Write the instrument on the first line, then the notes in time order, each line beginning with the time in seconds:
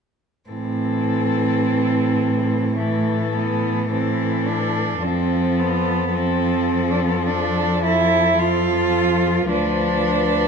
cello
0.49 A2 E3 C4 A4
2.76 E3 A3 A4
3.34 B3
3.90 E3 C4 A4
4.47 D4
5.03 F2 F3 C4 A4
5.60 B3
6.14 F3 C4 A4
6.91 D4
7.00 C4
7.08 B3
7.17 C4
7.27 D4
7.84 E4
8.38 F3 F4 A4
9.48 D2 F3 D4 B4